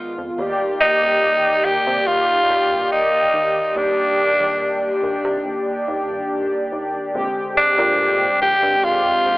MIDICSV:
0, 0, Header, 1, 4, 480
1, 0, Start_track
1, 0, Key_signature, -3, "major"
1, 0, Tempo, 845070
1, 217, Time_signature, 4, 2, 24, 8
1, 5327, End_track
2, 0, Start_track
2, 0, Title_t, "Tenor saxophone"
2, 0, Program_c, 0, 66
2, 456, Note_on_c, 0, 63, 117
2, 934, Note_on_c, 0, 67, 109
2, 942, Note_off_c, 0, 63, 0
2, 1173, Note_on_c, 0, 65, 113
2, 1182, Note_off_c, 0, 67, 0
2, 1654, Note_off_c, 0, 65, 0
2, 1657, Note_on_c, 0, 63, 104
2, 2141, Note_on_c, 0, 62, 99
2, 2149, Note_off_c, 0, 63, 0
2, 2859, Note_off_c, 0, 62, 0
2, 4299, Note_on_c, 0, 62, 112
2, 4755, Note_off_c, 0, 62, 0
2, 4779, Note_on_c, 0, 67, 110
2, 5021, Note_on_c, 0, 65, 110
2, 5029, Note_off_c, 0, 67, 0
2, 5327, Note_off_c, 0, 65, 0
2, 5327, End_track
3, 0, Start_track
3, 0, Title_t, "Analog polysynth"
3, 0, Program_c, 1, 90
3, 0, Control_c, 1, 64, 127
3, 0, Note_on_c, 1, 51, 78
3, 0, Note_on_c, 1, 56, 72
3, 0, Note_on_c, 1, 59, 77
3, 0, Note_on_c, 1, 65, 90
3, 187, Note_off_c, 1, 51, 0
3, 189, Note_off_c, 1, 56, 0
3, 190, Note_off_c, 1, 59, 0
3, 191, Note_off_c, 1, 65, 0
3, 209, Note_on_c, 1, 51, 99
3, 214, Note_on_c, 1, 58, 89
3, 220, Note_on_c, 1, 74, 87
3, 225, Control_c, 1, 64, 0
3, 225, Note_on_c, 1, 67, 112
3, 308, Control_c, 1, 64, 127
3, 1625, Note_off_c, 1, 51, 0
3, 1628, Note_off_c, 1, 58, 0
3, 1631, Note_off_c, 1, 74, 0
3, 1633, Note_off_c, 1, 67, 0
3, 1653, Note_on_c, 1, 51, 84
3, 1656, Note_on_c, 1, 58, 79
3, 1659, Note_on_c, 1, 74, 77
3, 1661, Note_on_c, 1, 67, 90
3, 2107, Note_off_c, 1, 51, 0
3, 2109, Note_off_c, 1, 58, 0
3, 2110, Note_off_c, 1, 74, 0
3, 2111, Note_off_c, 1, 67, 0
3, 2130, Note_on_c, 1, 51, 99
3, 2135, Note_on_c, 1, 58, 92
3, 2141, Note_on_c, 1, 62, 86
3, 2147, Note_on_c, 1, 67, 112
3, 3546, Note_off_c, 1, 51, 0
3, 3548, Note_off_c, 1, 58, 0
3, 3551, Note_off_c, 1, 62, 0
3, 3554, Note_off_c, 1, 67, 0
3, 3573, Note_on_c, 1, 51, 86
3, 3575, Note_on_c, 1, 58, 76
3, 3579, Note_on_c, 1, 62, 80
3, 3582, Note_on_c, 1, 67, 95
3, 4027, Note_off_c, 1, 51, 0
3, 4028, Note_off_c, 1, 58, 0
3, 4030, Note_off_c, 1, 62, 0
3, 4032, Note_off_c, 1, 67, 0
3, 4050, Note_on_c, 1, 50, 98
3, 4056, Note_on_c, 1, 56, 85
3, 4060, Note_on_c, 1, 60, 89
3, 4065, Control_c, 1, 64, 0
3, 4067, Note_on_c, 1, 67, 113
3, 4172, Control_c, 1, 64, 127
3, 5327, Note_off_c, 1, 50, 0
3, 5327, Note_off_c, 1, 56, 0
3, 5327, Note_off_c, 1, 60, 0
3, 5327, Note_off_c, 1, 67, 0
3, 5327, End_track
4, 0, Start_track
4, 0, Title_t, "Analog synth bass"
4, 0, Program_c, 2, 38
4, 102, Note_on_c, 2, 41, 90
4, 175, Note_off_c, 2, 41, 0
4, 218, Note_on_c, 2, 39, 103
4, 296, Note_off_c, 2, 39, 0
4, 581, Note_on_c, 2, 27, 107
4, 869, Note_off_c, 2, 27, 0
4, 938, Note_on_c, 2, 39, 87
4, 1016, Note_off_c, 2, 39, 0
4, 1060, Note_on_c, 2, 48, 101
4, 1134, Note_off_c, 2, 48, 0
4, 1176, Note_on_c, 2, 27, 88
4, 1255, Note_off_c, 2, 27, 0
4, 1415, Note_on_c, 2, 39, 85
4, 1541, Note_on_c, 2, 43, 90
4, 1550, Note_off_c, 2, 39, 0
4, 1615, Note_off_c, 2, 43, 0
4, 1897, Note_on_c, 2, 39, 76
4, 2052, Note_off_c, 2, 39, 0
4, 2136, Note_on_c, 2, 39, 102
4, 2215, Note_off_c, 2, 39, 0
4, 2500, Note_on_c, 2, 27, 106
4, 2789, Note_off_c, 2, 27, 0
4, 2857, Note_on_c, 2, 39, 90
4, 2936, Note_off_c, 2, 39, 0
4, 2981, Note_on_c, 2, 48, 104
4, 3054, Note_off_c, 2, 48, 0
4, 3099, Note_on_c, 2, 27, 87
4, 3176, Note_off_c, 2, 27, 0
4, 3339, Note_on_c, 2, 39, 91
4, 3461, Note_on_c, 2, 43, 87
4, 3470, Note_off_c, 2, 39, 0
4, 3534, Note_off_c, 2, 43, 0
4, 3818, Note_on_c, 2, 39, 79
4, 3973, Note_off_c, 2, 39, 0
4, 4058, Note_on_c, 2, 34, 104
4, 4136, Note_off_c, 2, 34, 0
4, 4421, Note_on_c, 2, 46, 108
4, 4709, Note_off_c, 2, 46, 0
4, 4778, Note_on_c, 2, 34, 90
4, 4856, Note_off_c, 2, 34, 0
4, 4900, Note_on_c, 2, 43, 103
4, 4974, Note_off_c, 2, 43, 0
4, 5016, Note_on_c, 2, 46, 93
4, 5095, Note_off_c, 2, 46, 0
4, 5257, Note_on_c, 2, 34, 90
4, 5327, Note_off_c, 2, 34, 0
4, 5327, End_track
0, 0, End_of_file